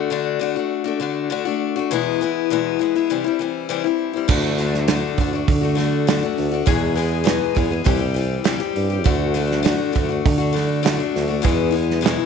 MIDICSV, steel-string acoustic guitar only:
0, 0, Header, 1, 2, 480
1, 0, Start_track
1, 0, Tempo, 597015
1, 1531, Time_signature, 4, 2, 24, 8
1, 9854, End_track
2, 0, Start_track
2, 0, Title_t, "Steel-string acoustic guitar"
2, 0, Program_c, 0, 25
2, 0, Note_on_c, 0, 57, 79
2, 0, Note_on_c, 0, 62, 82
2, 0, Note_on_c, 0, 66, 81
2, 82, Note_off_c, 0, 57, 0
2, 82, Note_on_c, 0, 50, 82
2, 87, Note_off_c, 0, 62, 0
2, 89, Note_off_c, 0, 66, 0
2, 92, Note_on_c, 0, 57, 94
2, 97, Note_on_c, 0, 62, 86
2, 99, Note_on_c, 0, 66, 103
2, 307, Note_off_c, 0, 50, 0
2, 316, Note_on_c, 0, 50, 69
2, 319, Note_off_c, 0, 57, 0
2, 322, Note_off_c, 0, 62, 0
2, 329, Note_on_c, 0, 57, 75
2, 332, Note_on_c, 0, 62, 85
2, 334, Note_off_c, 0, 66, 0
2, 344, Note_on_c, 0, 66, 81
2, 440, Note_off_c, 0, 66, 0
2, 443, Note_off_c, 0, 50, 0
2, 448, Note_off_c, 0, 62, 0
2, 449, Note_off_c, 0, 57, 0
2, 450, Note_on_c, 0, 66, 63
2, 458, Note_on_c, 0, 62, 59
2, 474, Note_on_c, 0, 57, 55
2, 667, Note_off_c, 0, 66, 0
2, 677, Note_on_c, 0, 66, 73
2, 678, Note_off_c, 0, 62, 0
2, 688, Note_on_c, 0, 62, 58
2, 694, Note_off_c, 0, 57, 0
2, 704, Note_on_c, 0, 57, 58
2, 799, Note_off_c, 0, 57, 0
2, 801, Note_on_c, 0, 50, 74
2, 804, Note_off_c, 0, 66, 0
2, 807, Note_off_c, 0, 62, 0
2, 809, Note_on_c, 0, 57, 73
2, 817, Note_on_c, 0, 62, 74
2, 823, Note_on_c, 0, 66, 84
2, 1034, Note_off_c, 0, 50, 0
2, 1041, Note_off_c, 0, 57, 0
2, 1044, Note_on_c, 0, 50, 90
2, 1051, Note_off_c, 0, 62, 0
2, 1051, Note_on_c, 0, 57, 88
2, 1053, Note_off_c, 0, 66, 0
2, 1061, Note_on_c, 0, 62, 90
2, 1062, Note_on_c, 0, 66, 103
2, 1157, Note_off_c, 0, 66, 0
2, 1167, Note_off_c, 0, 50, 0
2, 1167, Note_on_c, 0, 66, 65
2, 1171, Note_off_c, 0, 57, 0
2, 1171, Note_off_c, 0, 62, 0
2, 1181, Note_on_c, 0, 62, 62
2, 1191, Note_on_c, 0, 57, 58
2, 1403, Note_off_c, 0, 66, 0
2, 1413, Note_on_c, 0, 66, 67
2, 1416, Note_off_c, 0, 62, 0
2, 1421, Note_off_c, 0, 57, 0
2, 1425, Note_on_c, 0, 62, 59
2, 1439, Note_on_c, 0, 57, 52
2, 1532, Note_off_c, 0, 66, 0
2, 1534, Note_on_c, 0, 40, 91
2, 1535, Note_on_c, 0, 47, 98
2, 1538, Note_off_c, 0, 62, 0
2, 1540, Note_on_c, 0, 52, 94
2, 1545, Note_off_c, 0, 57, 0
2, 1548, Note_on_c, 0, 56, 102
2, 1551, Note_on_c, 0, 59, 93
2, 1555, Note_on_c, 0, 64, 113
2, 1767, Note_off_c, 0, 52, 0
2, 1773, Note_off_c, 0, 40, 0
2, 1773, Note_off_c, 0, 47, 0
2, 1777, Note_off_c, 0, 56, 0
2, 1777, Note_on_c, 0, 52, 76
2, 1781, Note_off_c, 0, 59, 0
2, 1783, Note_off_c, 0, 64, 0
2, 1786, Note_on_c, 0, 56, 80
2, 1792, Note_on_c, 0, 59, 80
2, 1800, Note_on_c, 0, 64, 81
2, 2013, Note_on_c, 0, 40, 94
2, 2014, Note_off_c, 0, 52, 0
2, 2019, Note_off_c, 0, 56, 0
2, 2019, Note_on_c, 0, 47, 87
2, 2022, Note_off_c, 0, 59, 0
2, 2023, Note_off_c, 0, 64, 0
2, 2027, Note_on_c, 0, 52, 96
2, 2031, Note_on_c, 0, 56, 84
2, 2033, Note_on_c, 0, 59, 94
2, 2033, Note_on_c, 0, 64, 92
2, 2235, Note_off_c, 0, 52, 0
2, 2245, Note_on_c, 0, 52, 67
2, 2250, Note_off_c, 0, 56, 0
2, 2252, Note_off_c, 0, 40, 0
2, 2253, Note_off_c, 0, 59, 0
2, 2255, Note_off_c, 0, 47, 0
2, 2259, Note_on_c, 0, 56, 65
2, 2262, Note_off_c, 0, 64, 0
2, 2263, Note_on_c, 0, 59, 77
2, 2272, Note_on_c, 0, 64, 80
2, 2366, Note_off_c, 0, 64, 0
2, 2368, Note_off_c, 0, 52, 0
2, 2372, Note_off_c, 0, 59, 0
2, 2376, Note_off_c, 0, 56, 0
2, 2376, Note_on_c, 0, 64, 57
2, 2381, Note_on_c, 0, 59, 59
2, 2390, Note_on_c, 0, 56, 50
2, 2397, Note_on_c, 0, 52, 51
2, 2485, Note_off_c, 0, 52, 0
2, 2491, Note_on_c, 0, 48, 84
2, 2494, Note_off_c, 0, 64, 0
2, 2494, Note_on_c, 0, 52, 90
2, 2497, Note_off_c, 0, 56, 0
2, 2497, Note_off_c, 0, 59, 0
2, 2500, Note_on_c, 0, 55, 86
2, 2508, Note_on_c, 0, 60, 80
2, 2508, Note_on_c, 0, 64, 91
2, 2597, Note_off_c, 0, 64, 0
2, 2607, Note_on_c, 0, 64, 65
2, 2611, Note_off_c, 0, 48, 0
2, 2613, Note_off_c, 0, 52, 0
2, 2615, Note_off_c, 0, 60, 0
2, 2616, Note_off_c, 0, 55, 0
2, 2625, Note_on_c, 0, 60, 65
2, 2634, Note_on_c, 0, 55, 54
2, 2727, Note_on_c, 0, 52, 70
2, 2729, Note_off_c, 0, 64, 0
2, 2730, Note_off_c, 0, 55, 0
2, 2735, Note_off_c, 0, 60, 0
2, 2739, Note_on_c, 0, 55, 77
2, 2745, Note_on_c, 0, 60, 75
2, 2748, Note_on_c, 0, 64, 83
2, 2957, Note_off_c, 0, 52, 0
2, 2965, Note_off_c, 0, 55, 0
2, 2965, Note_on_c, 0, 48, 79
2, 2966, Note_on_c, 0, 52, 89
2, 2971, Note_off_c, 0, 60, 0
2, 2974, Note_off_c, 0, 64, 0
2, 2975, Note_on_c, 0, 55, 94
2, 2981, Note_on_c, 0, 60, 91
2, 2983, Note_on_c, 0, 64, 103
2, 3079, Note_off_c, 0, 64, 0
2, 3088, Note_on_c, 0, 64, 62
2, 3089, Note_off_c, 0, 48, 0
2, 3089, Note_off_c, 0, 52, 0
2, 3093, Note_off_c, 0, 55, 0
2, 3093, Note_off_c, 0, 60, 0
2, 3103, Note_on_c, 0, 60, 61
2, 3113, Note_on_c, 0, 55, 55
2, 3314, Note_off_c, 0, 64, 0
2, 3324, Note_on_c, 0, 64, 56
2, 3334, Note_off_c, 0, 60, 0
2, 3343, Note_off_c, 0, 55, 0
2, 3344, Note_on_c, 0, 60, 58
2, 3352, Note_on_c, 0, 55, 52
2, 3440, Note_on_c, 0, 50, 91
2, 3444, Note_off_c, 0, 55, 0
2, 3448, Note_off_c, 0, 64, 0
2, 3448, Note_on_c, 0, 57, 95
2, 3455, Note_off_c, 0, 60, 0
2, 3458, Note_on_c, 0, 62, 94
2, 3465, Note_on_c, 0, 66, 99
2, 3675, Note_off_c, 0, 50, 0
2, 3685, Note_off_c, 0, 57, 0
2, 3685, Note_on_c, 0, 50, 73
2, 3692, Note_off_c, 0, 62, 0
2, 3695, Note_on_c, 0, 57, 76
2, 3698, Note_off_c, 0, 66, 0
2, 3701, Note_on_c, 0, 62, 78
2, 3712, Note_on_c, 0, 66, 73
2, 3912, Note_off_c, 0, 50, 0
2, 3914, Note_off_c, 0, 57, 0
2, 3921, Note_on_c, 0, 50, 91
2, 3924, Note_off_c, 0, 62, 0
2, 3924, Note_on_c, 0, 57, 91
2, 3930, Note_off_c, 0, 66, 0
2, 3933, Note_on_c, 0, 62, 95
2, 3940, Note_on_c, 0, 66, 87
2, 4152, Note_off_c, 0, 50, 0
2, 4162, Note_on_c, 0, 50, 71
2, 4163, Note_off_c, 0, 57, 0
2, 4173, Note_off_c, 0, 62, 0
2, 4173, Note_on_c, 0, 57, 69
2, 4176, Note_off_c, 0, 66, 0
2, 4183, Note_on_c, 0, 62, 72
2, 4188, Note_on_c, 0, 66, 81
2, 4275, Note_off_c, 0, 66, 0
2, 4284, Note_off_c, 0, 62, 0
2, 4284, Note_on_c, 0, 66, 61
2, 4287, Note_off_c, 0, 50, 0
2, 4292, Note_off_c, 0, 57, 0
2, 4294, Note_on_c, 0, 62, 52
2, 4304, Note_on_c, 0, 57, 50
2, 4501, Note_off_c, 0, 66, 0
2, 4510, Note_on_c, 0, 66, 68
2, 4519, Note_off_c, 0, 62, 0
2, 4528, Note_on_c, 0, 62, 63
2, 4529, Note_off_c, 0, 57, 0
2, 4539, Note_on_c, 0, 57, 53
2, 4625, Note_on_c, 0, 50, 72
2, 4626, Note_off_c, 0, 57, 0
2, 4632, Note_off_c, 0, 62, 0
2, 4635, Note_on_c, 0, 57, 71
2, 4641, Note_off_c, 0, 66, 0
2, 4642, Note_on_c, 0, 62, 69
2, 4650, Note_on_c, 0, 66, 72
2, 4872, Note_off_c, 0, 50, 0
2, 4879, Note_off_c, 0, 57, 0
2, 4881, Note_on_c, 0, 50, 89
2, 4883, Note_off_c, 0, 62, 0
2, 4889, Note_on_c, 0, 57, 91
2, 4891, Note_off_c, 0, 66, 0
2, 4893, Note_on_c, 0, 62, 104
2, 4901, Note_on_c, 0, 66, 94
2, 4997, Note_off_c, 0, 66, 0
2, 5006, Note_off_c, 0, 50, 0
2, 5007, Note_on_c, 0, 66, 67
2, 5010, Note_off_c, 0, 57, 0
2, 5012, Note_off_c, 0, 62, 0
2, 5022, Note_on_c, 0, 62, 62
2, 5028, Note_on_c, 0, 57, 55
2, 5229, Note_off_c, 0, 66, 0
2, 5239, Note_on_c, 0, 66, 68
2, 5245, Note_off_c, 0, 62, 0
2, 5254, Note_off_c, 0, 57, 0
2, 5254, Note_on_c, 0, 62, 55
2, 5264, Note_on_c, 0, 57, 52
2, 5353, Note_on_c, 0, 40, 87
2, 5359, Note_on_c, 0, 47, 101
2, 5364, Note_off_c, 0, 57, 0
2, 5364, Note_off_c, 0, 62, 0
2, 5365, Note_off_c, 0, 66, 0
2, 5365, Note_on_c, 0, 52, 98
2, 5367, Note_on_c, 0, 56, 94
2, 5367, Note_on_c, 0, 59, 104
2, 5372, Note_on_c, 0, 68, 103
2, 5582, Note_off_c, 0, 52, 0
2, 5592, Note_on_c, 0, 52, 77
2, 5595, Note_off_c, 0, 56, 0
2, 5599, Note_off_c, 0, 59, 0
2, 5602, Note_off_c, 0, 40, 0
2, 5605, Note_off_c, 0, 47, 0
2, 5605, Note_on_c, 0, 56, 77
2, 5609, Note_off_c, 0, 68, 0
2, 5609, Note_on_c, 0, 59, 73
2, 5619, Note_on_c, 0, 68, 84
2, 5819, Note_on_c, 0, 40, 93
2, 5821, Note_off_c, 0, 52, 0
2, 5824, Note_off_c, 0, 56, 0
2, 5824, Note_on_c, 0, 47, 86
2, 5825, Note_off_c, 0, 59, 0
2, 5830, Note_on_c, 0, 52, 99
2, 5831, Note_off_c, 0, 68, 0
2, 5834, Note_on_c, 0, 56, 88
2, 5835, Note_on_c, 0, 59, 90
2, 5841, Note_on_c, 0, 68, 95
2, 6058, Note_off_c, 0, 52, 0
2, 6068, Note_off_c, 0, 56, 0
2, 6068, Note_on_c, 0, 52, 75
2, 6075, Note_off_c, 0, 40, 0
2, 6077, Note_off_c, 0, 47, 0
2, 6077, Note_off_c, 0, 59, 0
2, 6077, Note_on_c, 0, 56, 74
2, 6085, Note_off_c, 0, 68, 0
2, 6087, Note_on_c, 0, 59, 78
2, 6094, Note_on_c, 0, 68, 78
2, 6186, Note_off_c, 0, 68, 0
2, 6196, Note_off_c, 0, 59, 0
2, 6196, Note_on_c, 0, 68, 65
2, 6199, Note_off_c, 0, 52, 0
2, 6204, Note_off_c, 0, 56, 0
2, 6206, Note_on_c, 0, 59, 63
2, 6217, Note_on_c, 0, 52, 45
2, 6218, Note_on_c, 0, 56, 53
2, 6302, Note_off_c, 0, 52, 0
2, 6305, Note_on_c, 0, 48, 80
2, 6312, Note_on_c, 0, 52, 90
2, 6315, Note_off_c, 0, 56, 0
2, 6317, Note_off_c, 0, 59, 0
2, 6318, Note_on_c, 0, 55, 80
2, 6320, Note_on_c, 0, 60, 91
2, 6321, Note_off_c, 0, 68, 0
2, 6324, Note_on_c, 0, 67, 92
2, 6412, Note_off_c, 0, 67, 0
2, 6421, Note_on_c, 0, 67, 72
2, 6425, Note_off_c, 0, 60, 0
2, 6435, Note_on_c, 0, 60, 63
2, 6437, Note_off_c, 0, 55, 0
2, 6438, Note_off_c, 0, 48, 0
2, 6441, Note_off_c, 0, 52, 0
2, 6447, Note_on_c, 0, 55, 52
2, 6545, Note_on_c, 0, 52, 70
2, 6552, Note_off_c, 0, 55, 0
2, 6554, Note_off_c, 0, 60, 0
2, 6556, Note_off_c, 0, 67, 0
2, 6561, Note_on_c, 0, 55, 68
2, 6563, Note_on_c, 0, 60, 72
2, 6576, Note_on_c, 0, 67, 75
2, 6779, Note_off_c, 0, 52, 0
2, 6785, Note_off_c, 0, 55, 0
2, 6787, Note_off_c, 0, 60, 0
2, 6787, Note_on_c, 0, 48, 86
2, 6789, Note_on_c, 0, 52, 91
2, 6795, Note_off_c, 0, 67, 0
2, 6795, Note_on_c, 0, 55, 92
2, 6796, Note_on_c, 0, 60, 95
2, 6804, Note_on_c, 0, 67, 99
2, 6903, Note_off_c, 0, 67, 0
2, 6913, Note_off_c, 0, 60, 0
2, 6913, Note_on_c, 0, 67, 76
2, 6918, Note_off_c, 0, 48, 0
2, 6919, Note_off_c, 0, 52, 0
2, 6922, Note_off_c, 0, 55, 0
2, 6923, Note_on_c, 0, 60, 62
2, 6939, Note_on_c, 0, 55, 56
2, 7145, Note_off_c, 0, 67, 0
2, 7154, Note_on_c, 0, 67, 66
2, 7163, Note_off_c, 0, 60, 0
2, 7172, Note_on_c, 0, 60, 64
2, 7174, Note_off_c, 0, 55, 0
2, 7188, Note_on_c, 0, 55, 47
2, 7269, Note_on_c, 0, 50, 93
2, 7275, Note_off_c, 0, 55, 0
2, 7277, Note_off_c, 0, 60, 0
2, 7278, Note_on_c, 0, 57, 94
2, 7280, Note_on_c, 0, 62, 89
2, 7282, Note_off_c, 0, 67, 0
2, 7287, Note_on_c, 0, 66, 104
2, 7500, Note_off_c, 0, 50, 0
2, 7507, Note_off_c, 0, 57, 0
2, 7510, Note_on_c, 0, 50, 81
2, 7514, Note_off_c, 0, 62, 0
2, 7516, Note_on_c, 0, 57, 78
2, 7524, Note_off_c, 0, 66, 0
2, 7524, Note_on_c, 0, 62, 92
2, 7533, Note_on_c, 0, 66, 77
2, 7731, Note_off_c, 0, 50, 0
2, 7740, Note_on_c, 0, 50, 100
2, 7741, Note_off_c, 0, 57, 0
2, 7744, Note_off_c, 0, 62, 0
2, 7747, Note_off_c, 0, 66, 0
2, 7751, Note_on_c, 0, 57, 88
2, 7753, Note_on_c, 0, 62, 84
2, 7757, Note_on_c, 0, 66, 100
2, 7970, Note_off_c, 0, 50, 0
2, 7975, Note_off_c, 0, 57, 0
2, 7980, Note_on_c, 0, 50, 74
2, 7985, Note_on_c, 0, 57, 73
2, 7991, Note_off_c, 0, 62, 0
2, 7998, Note_off_c, 0, 66, 0
2, 8000, Note_on_c, 0, 62, 84
2, 8008, Note_on_c, 0, 66, 80
2, 8101, Note_off_c, 0, 66, 0
2, 8111, Note_on_c, 0, 66, 59
2, 8113, Note_off_c, 0, 62, 0
2, 8114, Note_off_c, 0, 50, 0
2, 8117, Note_off_c, 0, 57, 0
2, 8122, Note_on_c, 0, 62, 53
2, 8135, Note_on_c, 0, 57, 51
2, 8335, Note_off_c, 0, 66, 0
2, 8344, Note_on_c, 0, 66, 70
2, 8351, Note_off_c, 0, 62, 0
2, 8361, Note_on_c, 0, 62, 65
2, 8362, Note_off_c, 0, 57, 0
2, 8371, Note_on_c, 0, 57, 56
2, 8463, Note_off_c, 0, 57, 0
2, 8464, Note_on_c, 0, 50, 76
2, 8469, Note_off_c, 0, 62, 0
2, 8473, Note_on_c, 0, 57, 71
2, 8476, Note_off_c, 0, 66, 0
2, 8479, Note_on_c, 0, 62, 73
2, 8491, Note_on_c, 0, 66, 81
2, 8695, Note_off_c, 0, 50, 0
2, 8698, Note_off_c, 0, 57, 0
2, 8705, Note_off_c, 0, 62, 0
2, 8705, Note_on_c, 0, 50, 86
2, 8707, Note_on_c, 0, 57, 93
2, 8712, Note_off_c, 0, 66, 0
2, 8715, Note_on_c, 0, 62, 106
2, 8722, Note_on_c, 0, 66, 100
2, 8810, Note_off_c, 0, 66, 0
2, 8819, Note_on_c, 0, 66, 73
2, 8823, Note_off_c, 0, 62, 0
2, 8833, Note_on_c, 0, 62, 65
2, 8836, Note_off_c, 0, 50, 0
2, 8836, Note_off_c, 0, 57, 0
2, 8845, Note_on_c, 0, 57, 60
2, 9056, Note_off_c, 0, 66, 0
2, 9065, Note_on_c, 0, 66, 67
2, 9067, Note_off_c, 0, 62, 0
2, 9077, Note_on_c, 0, 62, 61
2, 9079, Note_off_c, 0, 57, 0
2, 9088, Note_on_c, 0, 57, 49
2, 9180, Note_on_c, 0, 40, 95
2, 9188, Note_on_c, 0, 47, 100
2, 9189, Note_on_c, 0, 52, 90
2, 9192, Note_off_c, 0, 57, 0
2, 9194, Note_off_c, 0, 62, 0
2, 9195, Note_on_c, 0, 56, 102
2, 9196, Note_off_c, 0, 66, 0
2, 9197, Note_on_c, 0, 59, 100
2, 9203, Note_on_c, 0, 64, 99
2, 9403, Note_off_c, 0, 52, 0
2, 9413, Note_on_c, 0, 52, 74
2, 9415, Note_off_c, 0, 56, 0
2, 9425, Note_on_c, 0, 56, 76
2, 9427, Note_off_c, 0, 59, 0
2, 9433, Note_off_c, 0, 64, 0
2, 9434, Note_off_c, 0, 40, 0
2, 9437, Note_on_c, 0, 59, 84
2, 9438, Note_off_c, 0, 47, 0
2, 9443, Note_on_c, 0, 64, 76
2, 9655, Note_on_c, 0, 40, 89
2, 9657, Note_off_c, 0, 52, 0
2, 9661, Note_off_c, 0, 56, 0
2, 9665, Note_off_c, 0, 59, 0
2, 9665, Note_on_c, 0, 47, 94
2, 9666, Note_on_c, 0, 52, 93
2, 9670, Note_on_c, 0, 56, 86
2, 9673, Note_off_c, 0, 64, 0
2, 9675, Note_on_c, 0, 59, 96
2, 9682, Note_on_c, 0, 64, 99
2, 9854, Note_off_c, 0, 40, 0
2, 9854, Note_off_c, 0, 47, 0
2, 9854, Note_off_c, 0, 52, 0
2, 9854, Note_off_c, 0, 56, 0
2, 9854, Note_off_c, 0, 59, 0
2, 9854, Note_off_c, 0, 64, 0
2, 9854, End_track
0, 0, End_of_file